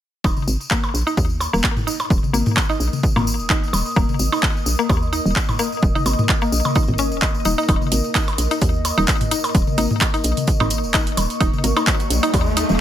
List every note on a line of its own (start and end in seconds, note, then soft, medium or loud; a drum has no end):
0.24 0.34 D#1 medium
0.24 12.80 A#3 medium
0.24 0.30 D#4 medium
0.24 kick loud
0.24 tambourine soft
0.24 percussion blips medium
0.37 12.80 A#4 medium
0.37 high tom medium
0.37 tambourine soft
0.46 0.57 G#1 loud
0.46 12.80 D#5 medium
0.46 tambourine medium
0.61 tambourine soft
0.70 0.74 A#3 medium
0.70 kick loud
0.70 clap medium
0.70 tambourine soft
0.84 tambourine soft
0.84 percussion blips medium
0.94 1.03 A#1 medium
0.94 9.93 D#6 medium
0.94 tambourine medium
1.07 1.12 D#4 medium
1.07 tambourine soft
1.17 1.48 D#2 medium
1.17 kick loud
1.17 tambourine soft
1.29 tambourine soft
1.40 tambourine medium
1.40 percussion blips medium
1.53 1.61 D#1 loud
1.53 1.56 A#3 medium
1.53 tambourine soft
1.64 kick medium
1.64 clap medium
1.64 tambourine soft
1.77 mid tom medium
1.77 tambourine soft
1.87 1.93 D#4 medium
1.87 tambourine medium
2.00 tambourine soft
2.00 percussion blips medium
2.10 2.20 D#1 loud
2.10 kick loud
2.10 tambourine medium
2.23 high tom medium
2.23 tambourine soft
2.33 2.43 G#1 loud
2.33 2.37 A#3 medium
2.33 tambourine medium
2.46 mid tom medium
2.46 tambourine soft
2.57 kick loud
2.57 clap medium
2.57 tambourine soft
2.57 percussion blips medium
2.69 2.74 D#4 medium
2.69 tambourine soft
2.80 2.89 A#1 medium
2.80 tambourine medium
2.93 high tom soft
2.93 tambourine soft
3.03 kick loud
3.03 tambourine medium
3.16 3.41 G#1 medium
3.16 3.19 A#3 medium
3.16 mid tom medium
3.16 tambourine soft
3.16 percussion blips medium
3.27 tambourine medium
3.39 3.69 D#1 medium
3.39 tambourine soft
3.50 3.56 D#4 medium
3.50 kick loud
3.50 clap medium
3.50 tambourine soft
3.63 tambourine soft
3.73 3.83 D#1 medium
3.73 tambourine medium
3.73 percussion blips medium
3.86 tambourine soft
3.96 4.06 D#1 loud
3.96 4.00 A#3 medium
3.96 kick loud
3.96 tambourine soft
4.09 high tom medium
4.09 tambourine soft
4.19 4.29 G#1 loud
4.19 tambourine medium
4.32 4.37 D#4 medium
4.32 tambourine soft
4.32 percussion blips medium
4.43 kick loud
4.43 clap medium
4.43 tambourine soft
4.56 tambourine soft
4.66 4.76 A#1 medium
4.66 tambourine loud
4.79 4.82 A#3 medium
4.79 tambourine soft
4.89 5.20 D#2 medium
4.89 kick loud
4.89 tambourine medium
4.89 percussion blips medium
5.02 tambourine soft
5.13 5.18 D#4 medium
5.13 tambourine medium
5.26 5.33 D#1 loud
5.26 tambourine soft
5.36 kick loud
5.36 clap medium
5.36 tambourine soft
5.49 mid tom medium
5.49 tambourine soft
5.49 percussion blips medium
5.59 5.63 A#3 medium
5.59 tambourine medium
5.72 tambourine soft
5.82 5.92 D#1 medium
5.82 kick loud
5.82 tambourine soft
5.95 6.00 D#4 medium
5.95 high tom medium
5.95 tambourine soft
6.06 6.15 G#1 loud
6.06 tambourine medium
6.06 percussion blips medium
6.19 mid tom medium
6.19 tambourine soft
6.29 kick loud
6.29 clap medium
6.29 tambourine soft
6.41 6.45 A#3 medium
6.41 tambourine soft
6.52 6.62 A#1 medium
6.52 tambourine medium
6.65 high tom soft
6.65 tambourine soft
6.65 percussion blips medium
6.75 6.81 D#4 medium
6.75 kick loud
6.75 tambourine medium
6.88 7.13 G#1 medium
6.88 mid tom medium
6.88 tambourine soft
6.98 7.05 C#4 medium
6.98 tambourine medium
7.12 7.41 D#1 medium
7.12 tambourine soft
7.22 7.26 D#5 medium
7.22 kick loud
7.22 clap medium
7.22 tambourine medium
7.22 percussion blips medium
7.34 tambourine soft
7.45 7.55 D#1 medium
7.45 7.49 D#4 medium
7.45 tambourine medium
7.58 7.63 D#4 medium
7.58 tambourine soft
7.69 7.78 D#1 loud
7.69 7.74 D#4 medium
7.69 kick loud
7.69 closed hi-hat medium
7.69 tambourine soft
7.69 percussion blips medium
7.81 high tom medium
7.81 tambourine soft
7.92 8.01 G#1 loud
7.92 7.99 A#3 medium
7.92 7.99 D#4 medium
7.92 7.99 A#4 medium
7.92 closed hi-hat medium
7.92 tambourine medium
8.04 tambourine soft
8.15 8.21 D#4 loud
8.15 kick loud
8.15 clap medium
8.15 closed hi-hat medium
8.15 tambourine medium
8.28 closed hi-hat soft
8.28 tambourine soft
8.28 percussion blips medium
8.38 8.48 A#1 medium
8.38 closed hi-hat medium
8.38 tambourine medium
8.51 8.56 D#4 medium
8.51 closed hi-hat soft
8.51 tambourine soft
8.61 8.92 D#2 loud
8.61 kick loud
8.61 closed hi-hat medium
8.61 tambourine medium
8.74 tambourine soft
8.85 closed hi-hat medium
8.85 tambourine medium
8.85 percussion blips medium
8.98 9.05 D#1 loud
8.98 9.02 D#4 loud
8.98 tambourine soft
9.07 kick loud
9.07 clap medium
9.07 closed hi-hat medium
9.07 tambourine medium
9.21 closed hi-hat soft
9.21 mid tom medium
9.21 tambourine soft
9.31 9.37 D#4 medium
9.31 closed hi-hat medium
9.31 tambourine medium
9.44 closed hi-hat soft
9.44 tambourine soft
9.44 percussion blips medium
9.55 9.64 D#1 loud
9.55 kick loud
9.55 closed hi-hat medium
9.55 tambourine medium
9.67 high tom medium
9.67 tambourine soft
9.78 9.87 G#1 loud
9.78 9.89 A#3 medium
9.78 9.89 D#4 medium
9.78 9.84 D#4 loud
9.78 9.89 A#4 loud
9.78 12.80 C#6 medium
9.78 closed hi-hat medium
9.78 tambourine medium
9.90 mid tom medium
9.90 tambourine soft
10.01 kick medium
10.01 clap medium
10.01 closed hi-hat medium
10.01 tambourine soft
10.01 percussion blips medium
10.14 10.19 D#4 medium
10.14 closed hi-hat soft
10.14 tambourine soft
10.24 10.34 A#1 medium
10.24 closed hi-hat medium
10.24 tambourine medium
10.37 closed hi-hat soft
10.37 high tom soft
10.37 tambourine soft
10.47 kick loud
10.47 closed hi-hat medium
10.47 tambourine soft
10.60 10.85 G#1 medium
10.60 10.65 D#4 loud
10.60 mid tom medium
10.60 tambourine soft
10.60 percussion blips medium
10.70 closed hi-hat medium
10.70 tambourine medium
10.84 11.13 D#1 medium
10.84 tambourine soft
10.94 11.00 D#4 medium
10.94 kick medium
10.94 clap medium
10.94 closed hi-hat medium
10.94 tambourine medium
11.07 closed hi-hat soft
11.07 tambourine soft
11.17 11.27 D#1 medium
11.17 closed hi-hat medium
11.17 tambourine medium
11.17 percussion blips medium
11.30 closed hi-hat soft
11.30 tambourine soft
11.40 11.50 D#1 loud
11.40 11.46 D#4 loud
11.40 kick loud
11.40 closed hi-hat medium
11.40 tambourine soft
11.40 riser medium
11.53 high tom soft
11.53 tambourine soft
11.64 11.73 G#1 loud
11.64 11.71 A#3 medium
11.64 11.71 D#4 medium
11.64 11.71 A#4 medium
11.64 closed hi-hat medium
11.64 tambourine medium
11.76 11.81 D#4 medium
11.76 tambourine soft
11.76 percussion blips medium
11.87 kick medium
11.87 clap medium
11.87 closed hi-hat medium
11.87 tambourine soft
12.00 closed hi-hat soft
12.00 tambourine soft
12.10 12.20 A#1 medium
12.10 closed hi-hat medium
12.10 tambourine medium
12.23 12.28 D#4 loud
12.23 closed hi-hat soft
12.23 tambourine soft
12.34 12.64 D#2 loud
12.34 kick loud
12.34 closed hi-hat medium
12.34 tambourine soft
12.34 percussion blips medium
12.46 tambourine soft
12.57 12.63 D#4 medium
12.57 closed hi-hat medium
12.57 tambourine medium
12.69 12.77 D#1 loud
12.69 tambourine soft